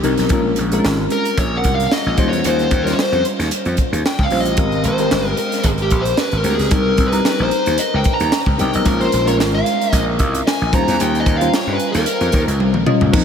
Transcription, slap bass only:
0.04 0.15 C2 medium
0.19 0.28 B1 medium
0.30 0.52 A#1 medium
0.58 0.79 A#1 medium
0.85 1.06 G#1 medium
1.38 1.59 A#1 medium
1.65 1.86 C2 loud
2.06 2.16 A#1 medium
2.18 2.32 D#2 medium
2.32 2.42 E2 medium
2.45 2.66 D#2 loud
2.71 2.92 D#2 medium
3.12 3.22 F2 medium
3.39 3.49 D#2 medium
3.66 3.75 F2 medium
3.92 4.02 D#2 medium
4.19 4.29 C#2 medium
4.31 4.45 A#1 medium
4.45 4.55 A1 medium
4.58 4.79 G#1 loud
4.84 5.06 G#1 medium
5.11 5.33 G1 medium
5.64 5.92 G#1 medium
5.92 6.13 A#1 medium
6.32 6.42 G#1 medium
6.44 6.56 D2 medium
6.59 6.69 C#2 medium
6.71 6.92 C2 loud
6.98 7.19 C2 medium
7.39 7.49 A#1 medium
7.67 7.76 D#2 medium
7.94 8.03 C#2 loud
8.20 8.30 D#2 medium
8.46 8.56 C#2 medium
8.60 8.71 C2 medium
8.75 8.84 B1 medium
8.86 9.07 A#1 loud
9.13 9.40 A#1 loud
9.40 9.61 G#1 medium
9.92 10.20 A#1 medium
10.20 10.41 C2 medium
10.61 10.71 A#1 medium
10.73 10.84 D#2 medium
10.88 10.97 E2 medium
11.01 11.21 D#2 loud
11.26 11.47 D#2 medium
11.67 11.77 G2 medium
11.94 12.04 D#2 medium
12.21 12.30 F2 medium
12.34 12.45 D#2 medium
12.47 12.60 C#2 loud
12.60 12.75 C2 medium
12.75 12.85 A#1 medium
13.01 13.11 C#2 medium
13.14 13.24 F2 loud

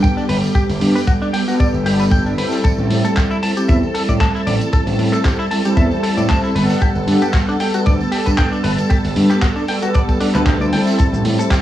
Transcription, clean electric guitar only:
0.03 0.14 G5 medium
0.17 0.23 D4 medium
0.29 0.36 B4 medium
0.55 0.62 G4 medium
0.95 0.99 B4 medium
1.07 1.12 F#4 medium
1.22 1.28 D4 medium
1.33 1.41 G5 medium
1.48 1.54 F#4 medium
1.60 1.67 D5 medium
1.86 1.93 G4 medium
2.00 2.04 B4 medium
2.12 2.23 G5 medium
2.26 2.32 D4 medium
2.38 2.45 B4 medium
2.64 2.71 A4 medium
3.05 3.13 A4 medium
3.16 3.21 G4 medium
3.31 3.37 E4 medium
3.43 3.50 A5 medium
3.57 3.63 G4 medium
3.68 3.76 E5 medium
3.95 4.02 A4 medium
4.09 4.12 D5 medium
4.21 4.31 A5 medium
4.35 4.41 E4 medium
4.47 4.54 D5 medium
4.73 4.80 A4 medium
5.13 5.22 A4 medium
5.25 5.29 G4 medium
5.39 5.45 E4 medium
5.51 5.58 A5 medium
5.65 5.71 G4 medium
5.77 5.84 E5 medium
6.03 6.10 A4 medium
6.17 6.21 D5 medium
6.29 6.40 A5 medium
6.43 6.49 E4 medium
6.55 6.63 B4 medium
6.82 6.89 G4 medium
7.22 7.31 G4 medium
7.34 7.38 F#4 medium
7.48 7.54 D4 medium
7.60 7.67 G5 medium
7.74 7.80 F#4 medium
7.86 7.93 D5 medium
8.12 8.19 G4 medium
8.26 8.30 B4 medium
8.37 8.49 G5 medium
8.52 8.58 D4 medium
8.64 8.71 B4 medium
8.90 8.97 G4 medium
9.30 9.39 G4 medium
9.42 9.47 F#4 medium
9.56 9.62 D4 medium
9.69 9.76 G5 medium
9.83 9.89 F#4 medium
9.95 10.02 D5 medium
10.21 10.28 D4 medium
10.35 10.44 B4 medium
10.47 10.54 G4 medium
10.61 10.65 D5 medium
10.73 10.84 G5 medium
10.99 11.06 A4 medium
11.39 11.48 A4 medium
11.51 11.55 G4 medium

